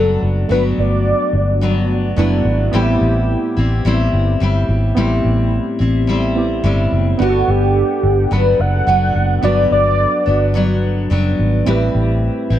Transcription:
Already playing: F#1 G2 F#3 A3 B3 D4 A4 F#5
0.22 F#1
0.48 G1 G2 F#3 A3 B3 D4 B4
0.54 D4 F#4
0.78 G1 D5
1.33 G1
1.61 G2 F#3 B3 D4
2.16 F#1 G2 F#3 A3 B3 D4 E4
2.45 G#1
2.71 A1 A2 G3 B3 C4 E4
2.76 G4
3.01 A1
3.57 A1 G3 C4 E4
3.85 A1 A2 G3 C4 E4
4.12 G1
4.40 G1 A2 G3 C4 E4
4.68 G#1
4.94 A1 A2 G3 B3 C4 E4
4.99 G4
5.24 A1
5.79 A1 G3 C4 E4
6.07 A2 G3 C4 E4
6.35 B3 C4 E4 G4
6.63 G1 A2 G3 C4 E4
6.92 F#1
7.18 G1 G2 B3 D4 F#4 F#5
7.22 B3 D4 G4
7.29 A4
7.48 G1 G4
8.03 G1
8.31 G1 G2 F#3 B3 D4 B4
8.59 F#1 F#5
8.87 F#1 G2 F#3 B3 D4
9.15 F#1
9.41 G1 G2 F#3 B3 D4 F#4 D5
9.47 B4
9.71 G1 D5
10.26 G1 F#3 B3 D4
10.54 G2 F#3 B3 D4
11.10 F#1 G2 F#3 B3 D4
11.39 G#1
11.65 A1 A2 G3 C4 E4 G4
11.70 B4
11.94 A1
12.50 A1 G3 C4 E4

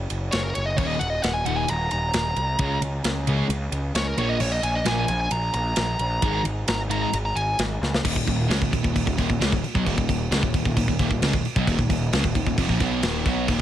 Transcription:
0.10 F#1, ride
0.32 F#1 C#5, snare, ride
0.43 A#4
0.55 F#1 C#5, ride
0.66 D#5
0.77 D#1 D#2 A#2 D#3 C#5, kick, crash
0.87 D#5
0.99 D#1 F#5, ride
1.10 D#5
1.22 D#1 F#5, snare, ride
1.33 G#5
1.45 D#1 D#2 A#2 D#3 F#5, ride
1.57 G#5
1.68 D#1 A#5, ride
1.91 D#1 A#5, ride
2.13 D#1, snare, ride
2.36 C2, ride
2.59 C#2 C#3 G#3 C#4, kick, ride
2.81 C#2, ride
3.04 C#2, snare, ride
3.27 C#3 G#3 C#4, ride
3.49 C#2, ride
3.72 C#2, ride
3.94 C#2 C#5, snare, ride
4.07 A#4
4.18 A#1 A#2 F3 A#3 C#5, ride
4.29 D#5
4.40 A#1 C#5, crash
4.52 D#5
4.63 A#1 G#5, ride
4.75 D#5
4.85 A#1 A#2 F3 A#3 G#5, snare, ride
4.99 G#5
5.08 A#1 G#5, ride
5.21 G#5
5.31 A#1 A#5, ride
5.54 A#1 A#5, ride
5.76 A#1, snare, ride
5.99 A#1, ride
6.22 G#1 G#2 D#3 G#3, kick, ride
6.45 G#1, ride
6.68 G#1 A#5, snare, ride
6.90 G#2 D#3 G#3 A#5, ride
7.02 A#5
7.13 G#1, ride
7.25 A#5
7.35 G#1 G#5, ride
7.59 G#1, snare, ride
7.81 C#2, snare
7.94 snare
8.04 D#1 D#2 A#2, kick, crash
8.16 D#1 D#2 A#2, kick
8.27 D#1 D#2 A#2, kick, crash
8.49 C#2 C#3 G#3, snare, crash
8.61 D#1 D#2 A#2, kick
8.72 D#1 D#2 A#2, kick, crash
8.83 D#1 D#2 A#2, kick
8.94 D#1 D#2 A#2, kick, crash
9.06 D#1 D#2 A#2, kick
9.18 D#1 D#2 A#2, kick, crash
9.30 D#1 D#2 A#2, kick
9.41 C#2 C#3 G#3, snare, crash
9.52 D#1 D#2 A#2, kick
9.64 muted picked electric bass stroke, muted distorted electric guitar stroke, crash
9.75 B1 B2 F#3, kick
9.86 D#1 D#2 A#2, kick, crash
9.97 D#1 D#2 A#2, kick
10.08 D#1 D#2 A#2, kick, crash
10.31 C#2 C#3 G#3, snare, crash
10.43 D#1 D#2 A#2, kick
10.54 D#1 D#2 A#2, kick, crash
10.65 D#1 D#2 A#2, kick
10.77 D#1 D#2 A#2, kick, crash
10.88 D#1 D#2 A#2, kick
10.99 D#1 D#2 A#2, kick, crash
11.11 D#1 D#2 A#2, kick
11.22 C#2 C#3 G#3, snare, crash
11.33 D#1 D#2 A#2, kick
11.44 muted picked electric bass stroke, muted distorted electric guitar stroke, crash
11.56 B1 B2 F#3, kick
11.67 D#1 D#2 A#2, kick, crash
11.79 D#1 D#2 A#2, kick
11.90 D#1 D#2 A#2, kick, crash
12.13 C#2 C#3 G#3, snare, crash
12.24 D#1 D#2 A#2, kick
12.35 D#1 D#2 A#2, kick, crash
12.47 D#1 D#2 A#2, kick
12.58 F1 F2 C3, kick, crash
12.69 A#1 A#2 F3, kick
12.80 B1 B2 F#3 B3, kick, crash
13.02 D#1 D#2 A#2 D#3, snare, crash
13.26 B1 B2 F#3 B3, kick, crash
13.48 D#1 D#2 A#2, kick, crash

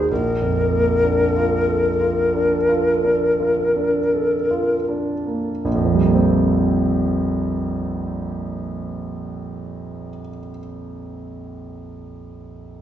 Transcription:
Already playing: D#2 A#3 D#4 F#4 A#4 C5
0.10 A#1 A#4
0.42 F2
0.73 A#3
1.04 D4
1.36 F4
1.68 A4
2.01 F4
2.34 D4
2.69 F4
3.04 D4
3.40 F4
3.76 D4
4.14 A4
4.51 F4
4.89 D4
5.27 A#3
5.65 A#1
5.75 F2
5.85 F3
5.95 G3
6.05 A#3
6.15 C4

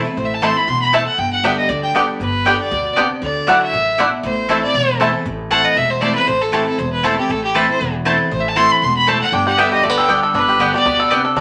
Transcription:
Already playing: E2
0.05 C4 E4
0.17 A1 A2 C5
0.25 E5
0.34 A5
0.41 E3 A3 C4 E4 C5 A5 C6
0.56 C4 E4 B5
0.68 E1 B2 C6
0.82 B5
0.93 A2 A3 E4 C5 A5
1.07 F#5
1.18 G1 G2 G5
1.33 F#5
1.43 D3 G3 B3 D4 G4 D5 E5 G5
1.58 D#5
1.69 D2 D3 D5
1.83 G5
1.94 D3 G3 B3 D4 G4 D5 G5
2.20 G1 G2 B4
2.45 D3 G3 B3 D4 G4 D5 G5
2.60 D5
2.71 D2 B2
2.96 C3 B3 D4 G4 D5 G5
3.22 D2 D3 D5
3.47 F#3 A3 D4 E4 F#4 D5 F#5
3.62 E5
3.73 A1 F#2
3.98 B2 A3 D4 E4 D5 F#5
4.23 A1 A2 C5
4.49 E3 A3 C4 E4 C5 A5
4.63 C4 E4 D5
4.74 E1 E2
5.00 E3 A3 C4 E4 C5 A5
5.25 A1 A2
5.51 E3 A3 C4 E4 C5 F#5 A5
5.65 D#5
5.76 E1 E2 E5
5.90 C5
6.01 E3 A3 C4 E4 C5 D5 A5
6.15 B4
6.27 A1 A2 C5
6.41 A4
6.52 E3 A3 C4 E4 G4 C5 A5
6.67 C4 E4 A4
6.78 E1 E2 C5
6.92 B4
7.03 E3 A3 C4 E4 A4 C5 A5
7.18 C4 E4 G4
7.29 A1 A2 A4
7.44 G4
7.54 E3 A3 C4 E4 B4 C5 A5
7.68 C4 E4 C5
7.80 E1 E2
8.05 E3 A3 C4 E4 C5 A5
8.31 A1 A2 C5
8.40 E5
8.48 A5
8.56 E3 A3 C4 E4 C5 A5 C6
8.71 B5
8.82 E1 B2 C6
8.96 B5
9.07 A2 A3 E4 C5 A5
9.21 F#5
9.32 G1 G2 D4 G5
9.47 G4 F#5
9.57 D3 G3 B3 G4 D5 E5 G5
9.72 G4 D#5
9.83 D2 D3 A3 D5
9.89 B3
9.97 A4 G5
10.08 D3 G3 B3 D4 G4 D5 G5
10.23 A4
10.34 G1 G2 D4 B4
10.49 G4
10.59 D3 G3 B3 G4 D5 G5
10.74 B3 G4 D5
10.85 D2 B2 B3
11.00 A4
11.10 C3 B3 D4 G4 D5 G5
11.25 A4
11.36 D2 D3 D4 D5

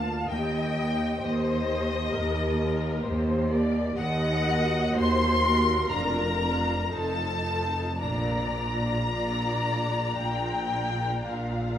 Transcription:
Already playing: D2 A#3 F4 F5 A5
0.27 D#2 A#3 G4 D#5 G5
0.76 A#3 G4
1.23 D#2 C5 D#5
1.69 A#3 G4
2.15 D#2 A#4
2.60 A#3 G4 A#4
3.06 D#2 C5
3.52 A#3 G4 D5
3.97 D#2 D#5 F#5
4.46 A#3 F#4
4.95 D#2 C5 C6
5.43 A#3 F#4 A#4
5.92 F1 F2 D4 F4 A#5
6.41 D4 F4
6.90 F1 F2 D#4 F4 A4 A5
7.44 D#4 F4
7.99 A#1 A#2 D4 F4 D5 A#5
8.54 D4 F4
9.09 A#1 A#2 D5
9.64 D4 F4
10.18 A#1 A#2 G5
10.73 D4 F4
11.25 A#1 A#2 F5

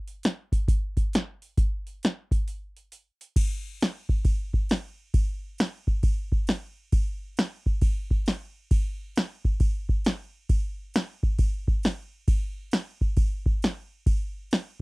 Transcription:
0.07 open hi-hat
0.23 snare, open hi-hat
0.52 kick, open hi-hat
0.68 kick, open hi-hat
0.97 kick, open hi-hat
1.13 snare, open hi-hat
1.42 open hi-hat
1.57 kick, open hi-hat
1.87 open hi-hat
2.03 snare, open hi-hat
2.31 kick, open hi-hat
2.48 open hi-hat
2.77 open hi-hat
2.92 open hi-hat
3.21 open hi-hat
3.36 kick, crash
3.81 snare, crash
4.09 kick
4.25 kick, crash
4.54 kick
4.69 snare, crash
5.14 kick, crash
5.58 snare, crash
5.87 kick
6.03 kick, crash
6.32 kick
6.47 snare, crash
6.92 kick, crash
7.37 snare, crash
7.66 kick
7.81 kick, crash
8.11 kick
8.26 snare, crash
8.71 kick, crash
9.16 snare, crash
9.45 kick
9.60 kick, crash
9.89 kick
10.04 snare, crash
10.49 kick, crash
10.94 snare, crash
11.23 kick
11.38 kick, crash
11.68 kick
11.83 snare, crash
12.28 kick, crash
12.71 snare, crash
13.01 kick
13.17 kick, crash
13.46 kick
13.62 snare, crash
14.06 kick, crash
14.51 snare, crash

